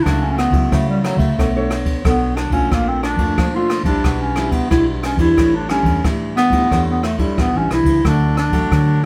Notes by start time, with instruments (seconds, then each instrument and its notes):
0.03 fingered electric bass C#2, nylon-string guitar C#3 F#3 A3 E4, clarinet D4, kick, cross-stick, ride
0.22 clarinet C#4 D4
0.31 clarinet C#4
0.37 clarinet B3, cross-stick, ride
0.51 fingered electric bass C#2, nylon-string guitar F#3 A3 E4, kick, ride
0.72 nylon-string guitar C#3, fingered electric bass C#3, clarinet A3, kick, cross-stick, ride
0.89 clarinet G3
1.04 nylon-string guitar F#3 A3 E4, clarinet F#3, cross-stick, ride
1.17 fingered electric bass C#3, clarinet A3, kick, ride
1.38 fingered electric bass B1, nylon-string guitar B3 D4 A4 C#5, kick, cross-stick, ride
1.56 nylon-string guitar D4 A4 C#5
1.70 cross-stick, ride
1.86 kick, ride
2.04 fingered electric bass B1, nylon-string guitar F#3 D4 A4 C#5, clarinet B3, kick, cross-stick, ride
2.36 clarinet D4, cross-stick, ride
2.50 fingered electric bass B1, nylon-string guitar A3 D4 F4, clarinet C#4, kick, ride
2.71 fingered electric bass A#1, nylon-string guitar A#2, clarinet A#3, kick, cross-stick, ride
2.88 clarinet C4
3.03 clarinet D4, cross-stick, ride
3.17 fingered electric bass F2, nylon-string guitar A3 D4 F4, kick, ride
3.38 fingered electric bass A#2, nylon-string guitar F3, kick, cross-stick, ride
3.55 nylon-string guitar A3 D4 F4, clarinet F4
3.70 cross-stick, ride
3.83 fingered electric bass A#1, nylon-string guitar G3 D4 E4, clarinet D4, kick, ride
4.04 fingered electric bass B1, nylon-string guitar B2, kick, cross-stick, ride
4.21 clarinet C#4
4.36 nylon-string guitar G3 D4 E4, cross-stick, ride
4.52 clarinet B3, kick, ride
4.70 fingered electric bass B1, nylon-string guitar B2 G3 D4 E4, clarinet E4, kick, cross-stick, ride
5.02 clarinet C#4, cross-stick, ride
5.16 fingered electric bass E2, nylon-string guitar G3 D4 E4, clarinet E4, kick, ride
5.37 fingered electric bass A1, nylon-string guitar A2, kick, cross-stick, ride
5.55 clarinet D4
5.69 nylon-string guitar G3 D4 E4, clarinet C#4, cross-stick, ride
5.83 fingered electric bass E2, kick, ride
6.04 fingered electric bass A2, nylon-string guitar E3 G3 D4 E4, kick, cross-stick, ride
6.37 clarinet B3, cross-stick, ride
6.50 fingered electric bass A2, nylon-string guitar G3 D4 E4, kick, ride
6.71 fingered electric bass E2, nylon-string guitar A2 G3 D4 E4, kick, cross-stick, ride
6.89 clarinet B3
7.03 clarinet A3, cross-stick, ride
7.18 nylon-string guitar G3 D4 E4, clarinet G3, kick, ride
7.37 fingered electric bass A1, nylon-string guitar E3, clarinet B3, kick, cross-stick, ride
7.55 fingered electric bass A1, nylon-string guitar G3 D4 E4, clarinet C#4
7.71 fingered electric bass B1, clarinet E4, cross-stick, ride
7.84 fingered electric bass C#2, kick, ride
8.04 fingered electric bass D2, nylon-string guitar D3 F#3 A3, clarinet D4, kick, cross-stick, ride
8.37 clarinet D4, cross-stick, ride
8.50 fingered electric bass A1, nylon-string guitar F#3 A3, kick, ride
8.71 nylon-string guitar A2, fingered electric bass D3, kick, cross-stick, ride